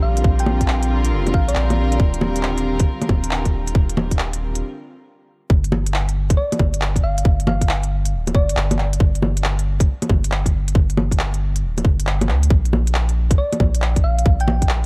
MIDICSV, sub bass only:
0, 0, Header, 1, 2, 480
1, 0, Start_track
1, 0, Key_signature, -2, "minor"
1, 0, Tempo, 437956
1, 267, Time_signature, 4, 2, 24, 8
1, 16285, End_track
2, 0, Start_track
2, 0, Title_t, "Sub bass"
2, 0, Program_c, 0, 38
2, 27, Note_on_c, 0, 34, 81
2, 254, Note_off_c, 0, 34, 0
2, 266, Note_on_c, 0, 34, 97
2, 1229, Note_on_c, 0, 29, 88
2, 1245, Note_off_c, 0, 34, 0
2, 1465, Note_on_c, 0, 34, 98
2, 1481, Note_off_c, 0, 29, 0
2, 1693, Note_off_c, 0, 34, 0
2, 1709, Note_on_c, 0, 34, 87
2, 2178, Note_off_c, 0, 34, 0
2, 2187, Note_on_c, 0, 27, 96
2, 3137, Note_off_c, 0, 27, 0
2, 3389, Note_on_c, 0, 27, 84
2, 3858, Note_off_c, 0, 27, 0
2, 3867, Note_on_c, 0, 27, 82
2, 4094, Note_off_c, 0, 27, 0
2, 4112, Note_on_c, 0, 27, 100
2, 5070, Note_off_c, 0, 27, 0
2, 6027, Note_on_c, 0, 31, 100
2, 6977, Note_off_c, 0, 31, 0
2, 7225, Note_on_c, 0, 31, 86
2, 7696, Note_off_c, 0, 31, 0
2, 7709, Note_on_c, 0, 31, 79
2, 7935, Note_off_c, 0, 31, 0
2, 7946, Note_on_c, 0, 31, 105
2, 8911, Note_on_c, 0, 26, 92
2, 8927, Note_off_c, 0, 31, 0
2, 9147, Note_on_c, 0, 31, 100
2, 9164, Note_off_c, 0, 26, 0
2, 9374, Note_off_c, 0, 31, 0
2, 9386, Note_on_c, 0, 31, 92
2, 9856, Note_off_c, 0, 31, 0
2, 9867, Note_on_c, 0, 31, 104
2, 10817, Note_off_c, 0, 31, 0
2, 11066, Note_on_c, 0, 31, 88
2, 11536, Note_off_c, 0, 31, 0
2, 11543, Note_on_c, 0, 31, 82
2, 11772, Note_off_c, 0, 31, 0
2, 11785, Note_on_c, 0, 31, 98
2, 12743, Note_on_c, 0, 26, 91
2, 12759, Note_off_c, 0, 31, 0
2, 12981, Note_on_c, 0, 31, 89
2, 12998, Note_off_c, 0, 26, 0
2, 13463, Note_on_c, 0, 38, 101
2, 13479, Note_off_c, 0, 31, 0
2, 13692, Note_off_c, 0, 38, 0
2, 13705, Note_on_c, 0, 34, 103
2, 14656, Note_off_c, 0, 34, 0
2, 14907, Note_on_c, 0, 34, 87
2, 15377, Note_off_c, 0, 34, 0
2, 15388, Note_on_c, 0, 34, 80
2, 15615, Note_off_c, 0, 34, 0
2, 15624, Note_on_c, 0, 34, 102
2, 16285, Note_off_c, 0, 34, 0
2, 16285, End_track
0, 0, End_of_file